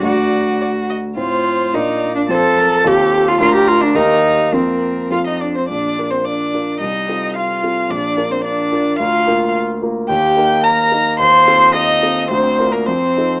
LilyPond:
<<
  \new Staff \with { instrumentName = "Violin" } { \time 2/4 \key d \phrygian \tempo 4 = 108 d''4 d''8 ees''8 | \key bes \major c''4 d''4 | c''8 bes'8 a'4 | bes'4 bes'4 |
bes'4 f''16 ees''16 d''16 c''16 | d''8. c''16 d''4 | ees''4 f''4 | d''8. c''16 d''4 |
f''4 r4 | g''4 bes''4 | c'''4 ees''4 | c''8. bes'16 c''4 | }
  \new Staff \with { instrumentName = "Grand piano" } { \time 2/4 \key d \phrygian <d, a d' d''>2 | \key bes \major <a, c' f' c''>4 <bes, d' f' bes'>4 | <f, c' f' c''>4 <ees, c' f' a'>4 | <d, d' f' bes'>4 <ees, bes g' bes'>4 |
<f, bes f' bes'>4 <f, c' f' a'>4 | bes,,8 <d' f' bes'>4 <d' f' bes'>8 | c,8 <c' f' a'>4 <c' f' a'>8 | bes,,8 <d' f' bes'>4 <d' f' bes'>8 |
d,8 <bes f' bes'>4 <bes f' bes'>8 | ees,8 <bes ees' bes'>4 <bes ees' bes'>8 | ees,8 <c' f' a'>4 <c' f' a'>8 | d,8 <d' f' bes'>8 f,8 <ees' f' a'>8 | }
  \new Staff \with { instrumentName = "Cello" } { \time 2/4 \key d \phrygian fis'4. r8 | \key bes \major f'4 ees'8. d'16 | a'4 g'8. f'16 | f'16 g'16 f'16 d'16 ees'4 |
c'4 f'16 ees'16 d'16 c'16 | d'8. c'16 d'4 | ees'4 f'4 | d'8. c'16 d'4 |
f'4 r4 | g'4 bes'4 | c''4 ees'4 | c'8. bes16 c'4 | }
>>